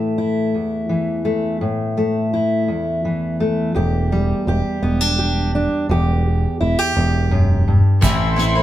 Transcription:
0.00 0.53 A2 soft
0.00 0.89 E3 soft
0.00 1.24 A3 soft
0.00 0.18 E4 soft
0.18 2.32 E4 soft
0.54 1.61 E2 soft
0.89 3.04 E3 soft
1.25 1.56 A3 soft
1.61 2.68 A2 medium
1.97 3.39 A3 soft
2.33 3.75 E4 soft
2.68 3.73 E2 soft
3.05 3.72 E3 soft
3.40 3.71 A3 soft
3.74 4.32 E1 medium
3.74 5.89 E2 medium
3.74 4.48 G4 medium
4.12 6.26 G3 soft
4.47 4.61 E1 medium
4.47 5.18 G4 medium
4.82 5.66 E1 medium
4.82 5.01 B3 soft
5.01 5.54 D4 soft
5.19 5.86 G4 soft
5.55 5.86 D4 medium
5.89 6.45 E1 medium
5.89 6.95 E2 medium
5.89 6.60 G4 medium
6.61 6.75 E1 medium
6.61 6.79 E4 medium
6.79 8.04 G4 soft
6.96 7.80 E1 medium
6.96 7.31 E2 soft
7.31 7.67 F#2 medium
7.68 8.03 G2 medium
8.01 8.59 A1 medium
8.01 8.38 A2 medium
8.01 8.35 E3 medium
8.01 8.36 A3 medium
8.01 8.38 C4 medium
8.01 8.38 E4 medium
8.01 8.63 A4 medium
8.01 8.63 C5 medium
8.01 8.63 E5 medium
8.01 8.63 C6 medium
8.01 kick medium
8.01 clap medium
8.01 closed hi-hat medium
8.01 shaker loud
8.36 8.56 E3 medium
8.36 8.56 A3 medium
8.36 8.55 C4 medium
8.36 8.54 E4 medium
8.36 clap soft
8.36 closed hi-hat medium
8.55 8.63 A3 medium
8.55 8.63 C4 medium
8.55 8.63 E4 medium

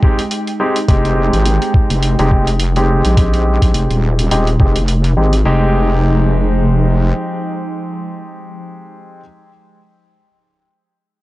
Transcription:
0.00 5.41 G#3 medium
0.00 0.19 G#3 medium
0.00 0.19 C4 medium
0.00 5.42 D#4 medium
0.00 0.18 D#4 medium
0.00 0.19 G4 medium
0.00 5.42 G5 medium
0.00 kick medium
0.19 closed hi-hat soft
0.31 closed hi-hat medium
0.47 closed hi-hat soft
0.60 0.75 G#3 medium
0.60 0.76 C4 medium
0.60 0.76 D#4 medium
0.60 0.76 G4 medium
0.76 closed hi-hat soft
0.88 1.30 F1 loud
0.88 2.15 G#3 medium
0.88 2.15 C4 medium
0.88 2.15 D#4 medium
0.88 2.15 G4 loud
0.88 kick loud
0.88 closed hi-hat medium
1.05 closed hi-hat soft
1.33 1.59 G#1 medium
1.33 closed hi-hat soft
1.46 closed hi-hat medium
1.62 closed hi-hat soft
1.74 kick medium
1.90 2.16 F1 medium
1.90 closed hi-hat soft
2.03 closed hi-hat medium
2.19 3.02 F1 medium
2.19 2.29 G#3 medium
2.19 2.29 C4 medium
2.19 2.29 D#4 medium
2.19 2.29 G4 loud
2.19 closed hi-hat soft
2.31 2.47 G#3 medium
2.31 2.47 C4 medium
2.31 2.47 D#4 medium
2.31 2.47 G4 medium
2.31 kick medium
2.47 closed hi-hat soft
2.59 closed hi-hat medium
2.76 3.14 G#3 medium
2.76 3.14 C4 medium
2.76 3.14 D#4 medium
2.76 3.14 G4 medium
2.76 closed hi-hat soft
3.05 3.59 A#1 medium
3.05 closed hi-hat soft
3.17 4.28 G#3 medium
3.17 4.28 C4 medium
3.17 4.28 D#4 medium
3.17 4.28 G4 medium
3.17 kick loud
3.17 closed hi-hat medium
3.33 closed hi-hat soft
3.62 3.72 A#1 medium
3.62 kick medium
3.62 closed hi-hat soft
3.74 3.87 F1 medium
3.74 closed hi-hat medium
3.90 4.29 D#1 medium
3.90 closed hi-hat soft
4.19 closed hi-hat medium
4.31 4.58 D#1 medium
4.31 4.47 G#3 medium
4.31 4.47 C4 medium
4.31 4.47 D#4 medium
4.31 4.47 G4 loud
4.31 closed hi-hat medium
4.47 closed hi-hat soft
4.60 5.15 F1 medium
4.60 4.76 G#3 medium
4.60 4.76 C4 medium
4.60 4.76 D#4 medium
4.60 4.76 G4 medium
4.60 kick medium
4.76 closed hi-hat medium
4.88 closed hi-hat medium
5.04 closed hi-hat soft
5.17 5.43 G#1 medium
5.17 5.33 G#3 medium
5.17 5.33 C4 medium
5.17 5.33 D#4 medium
5.17 5.33 G4 medium
5.33 closed hi-hat soft
5.45 7.13 F1 medium
5.45 8.50 F3 medium
5.45 8.50 G#3 medium
5.45 9.20 G#3 medium
5.45 9.20 C4 medium
5.45 8.50 D#4 medium
5.45 9.20 D#4 medium
5.45 9.20 G4 medium

